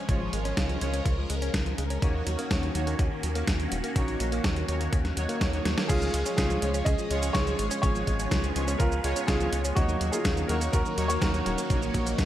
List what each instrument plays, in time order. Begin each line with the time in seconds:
Already playing: string machine F3 G#3 C#4
0.09 analog synth bass G#1, clean electric guitar C#3, analog polysynth G#3 C#4 F4 C#5, string machine A#4, kick, closed hi-hat
0.21 clean electric guitar F3
0.33 analog synth bass G#1, clean electric guitar G#3, closed hi-hat
0.45 clean electric guitar C#4, closed hi-hat
0.57 analog synth bass C#2, clean electric guitar C#3, kick, snare, closed hi-hat
0.69 clean electric guitar F3, closed hi-hat
0.81 analog synth bass C#2, analog polysynth G#3 C#4 F4 C#5, clean electric guitar G#3, closed hi-hat
0.94 clean electric guitar C#4, closed hi-hat
1.06 analog synth bass C#2, clean electric guitar C#3, kick, closed hi-hat
1.18 clean electric guitar F3
1.30 analog synth bass C#2, clean electric guitar G#3, closed hi-hat
1.42 clean electric guitar C#4, closed hi-hat
1.54 analog synth bass C#2, clean electric guitar C#3, kick, snare, closed hi-hat
1.66 clean electric guitar F3, closed hi-hat
1.78 analog synth bass C#2, clean electric guitar G#3, closed hi-hat
1.90 clean electric guitar C#4, closed hi-hat
2.02 analog synth bass D#2, clean electric guitar C#3, string machine D#3 A#3 F#4, analog polysynth A#3 D#4 F#4 C#5, kick, closed hi-hat
2.14 clean electric guitar D#3
2.27 analog synth bass D#2, clean electric guitar F#3, closed hi-hat
2.39 clean electric guitar A#3, closed hi-hat
2.51 analog synth bass D#2, clean electric guitar C#3, kick, snare, closed hi-hat
2.63 clean electric guitar D#3, closed hi-hat
2.75 analog synth bass D#2, clean electric guitar F#3, analog polysynth A#3 D#4 F#4 C#5, closed hi-hat
2.87 clean electric guitar A#3, closed hi-hat
2.99 analog synth bass D#2, clean electric guitar C#3, kick, closed hi-hat
3.11 clean electric guitar D#3
3.23 analog synth bass D#2, clean electric guitar F#3, closed hi-hat
3.35 clean electric guitar A#3, closed hi-hat
3.47 analog synth bass D#2, clean electric guitar C#3, kick, snare, closed hi-hat
3.60 clean electric guitar D#3, closed hi-hat
3.72 analog synth bass D#1, clean electric guitar F#3, closed hi-hat
3.84 clean electric guitar A#3, closed hi-hat
3.96 analog synth bass A#1, clean electric guitar C#3, analog polysynth A#3 D#4 F#4 C#5, kick, closed hi-hat
4.08 clean electric guitar D#3, closed hi-hat
4.20 analog synth bass A#1, clean electric guitar F#3, closed hi-hat
4.32 clean electric guitar A#3, closed hi-hat
4.44 analog synth bass D#2, clean electric guitar C#3, kick, snare, closed hi-hat
4.56 clean electric guitar D#3, closed hi-hat
4.68 analog synth bass D#2, clean electric guitar F#3, analog polysynth A#3 D#4 F#4 C#5, closed hi-hat
4.81 clean electric guitar A#3, closed hi-hat
4.93 analog synth bass D#2, clean electric guitar C#3, kick, closed hi-hat
5.05 clean electric guitar D#3, snare, closed hi-hat
5.17 analog synth bass D#2, clean electric guitar F#3, analog polysynth A#3 D#4 F#4 C#5, closed hi-hat
5.29 clean electric guitar A#3, closed hi-hat
5.41 analog synth bass D#2, clean electric guitar C#3, kick, snare, closed hi-hat
5.53 clean electric guitar D#3, analog polysynth A#3 D#4 F#4 C#5, closed hi-hat
5.65 analog synth bass D#2, clean electric guitar F#3, snare, closed hi-hat
5.77 clean electric guitar A#3, snare, closed hi-hat
5.88 analog synth bass C#2, clean electric guitar C#3, string machine F3 G#3 C#4 G#4, analog polysynth G#3 C#4 F4 C#5, grand piano F4 G#4, kick, closed hi-hat, crash, cabasa
6.02 clean electric guitar F3, cabasa
6.14 analog synth bass C#2, clean electric guitar G#3, closed hi-hat
6.26 clean electric guitar C#4, closed hi-hat, cabasa
6.37 analog synth bass C#2, clean electric guitar C#3, grand piano F4 G#4, kick, snare, closed hi-hat, cabasa
6.50 clean electric guitar F3, closed hi-hat, cabasa
6.62 analog synth bass C#2, clean electric guitar G#3, analog polysynth G#3 C#4 F4 C#5, closed hi-hat
6.74 clean electric guitar C#4, closed hi-hat, cabasa
6.85 analog synth bass C#2, clean electric guitar C#3, grand piano G#4 D#5, kick, closed hi-hat, cabasa
6.98 clean electric guitar F3, cabasa
7.10 analog synth bass C#2, clean electric guitar G#3, analog polysynth G#3 C#4 F4 C#5, closed hi-hat
7.23 clean electric guitar C#4, closed hi-hat, cabasa
7.33 analog synth bass C#2, clean electric guitar C#3, grand piano G#4 C#5, kick, snare, closed hi-hat, cabasa
7.47 clean electric guitar F3, analog polysynth G#3 C#4 F4 C#5, closed hi-hat, cabasa
7.59 analog synth bass G#1, clean electric guitar G#3, closed hi-hat
7.71 clean electric guitar C#4, closed hi-hat, cabasa
7.82 analog synth bass G#1, clean electric guitar C#3, analog polysynth G#3 C#4 F4 C#5, string machine B3, grand piano G#4 C#5, kick, closed hi-hat, cabasa
7.95 clean electric guitar F3, cabasa
8.07 analog synth bass G#1, clean electric guitar G#3, kick, closed hi-hat
8.19 clean electric guitar C#4, closed hi-hat, cabasa
8.31 analog synth bass C#2, clean electric guitar C#3, kick, snare, closed hi-hat, cabasa
8.44 clean electric guitar F3, closed hi-hat, cabasa
8.56 analog synth bass C#2, analog polysynth G#3 C#4 F4 C#5, clean electric guitar G#3, closed hi-hat
8.68 clean electric guitar C#4, closed hi-hat, cabasa
8.79 analog synth bass C#2, clean electric guitar C#3, grand piano F4 A#4, kick, closed hi-hat, cabasa
8.92 clean electric guitar F3, cabasa
9.04 analog synth bass C#2, analog polysynth G#3 C#4 F4 C#5, clean electric guitar G#3, closed hi-hat
9.16 clean electric guitar C#4, closed hi-hat, cabasa
9.27 analog synth bass C#2, clean electric guitar C#3, grand piano F4 G#4, kick, snare, closed hi-hat, cabasa
9.40 clean electric guitar F3, analog polysynth G#3 C#4 F4 C#5, closed hi-hat, cabasa
9.52 analog synth bass C#2, clean electric guitar G#3, closed hi-hat
9.65 clean electric guitar C#4, closed hi-hat, cabasa
9.75 analog synth bass D#2, clean electric guitar C#3, string machine D#3 F#3 A#3 C#4, analog polysynth F#3 A#3 D#4 C#5, grand piano D#4 F#4, kick, closed hi-hat, cabasa
9.89 clean electric guitar D#3, cabasa
10.01 analog synth bass D#2, clean electric guitar F#3, closed hi-hat
10.12 clean electric guitar A#3, grand piano F4 G#4, closed hi-hat, cabasa
10.25 analog synth bass D#2, clean electric guitar C#3, kick, snare, closed hi-hat, cabasa
10.37 clean electric guitar D#3, closed hi-hat, cabasa
10.48 analog synth bass D#2, clean electric guitar F#3, analog polysynth A#3 D#4 F#4 C#5, grand piano F#4 A#4, closed hi-hat
10.61 clean electric guitar A#3, closed hi-hat, cabasa
10.72 analog synth bass D#2, clean electric guitar C#3, grand piano F#4 A#4, kick, closed hi-hat, cabasa
10.86 clean electric guitar D#3, cabasa
10.98 analog synth bass D#2, clean electric guitar F#3, analog polysynth A#3 D#4 F#4 C#5, closed hi-hat
11.08 clean electric guitar A#3, grand piano A#4 C#5, closed hi-hat, cabasa
11.20 analog synth bass D#2, clean electric guitar C#3, grand piano F#4 A#4, kick, snare, closed hi-hat, cabasa
11.34 clean electric guitar D#3, analog polysynth A#3 D#4 F#4 C#5, closed hi-hat, cabasa
11.45 analog synth bass D#1, clean electric guitar F#3, grand piano F#4 A#4, closed hi-hat
11.58 clean electric guitar A#3, closed hi-hat, cabasa
11.70 analog synth bass A#1, clean electric guitar C#3, analog polysynth A#3 D#4 F#4 C#5, kick, closed hi-hat, cabasa
11.82 clean electric guitar D#3, cabasa
11.94 analog synth bass A#1, clean electric guitar F#3, kick, closed hi-hat
12.07 clean electric guitar A#3, closed hi-hat, cabasa
12.18 analog synth bass D#2, clean electric guitar C#3, kick, snare, closed hi-hat, cabasa